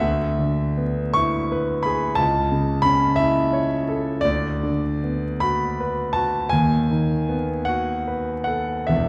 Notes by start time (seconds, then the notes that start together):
0.00 D2 E5
0.39 D3
0.77 B3
1.13 E4 C#6
1.52 B4
1.83 G#4 B5
2.15 C#2 A5
2.52 C#3
2.82 C#4 B5
3.16 E4 E5
3.53 C#5
3.89 A4
4.21 D2 D5
4.63 D3
5.04 B3
5.40 F#4 B5
5.80 B4
6.13 F#4 A5
6.49 D#2 G#5
6.91 D#3
7.29 B3
7.65 F#4 F#5
8.08 B4
8.44 A4 F#5
8.87 E1 E2 E5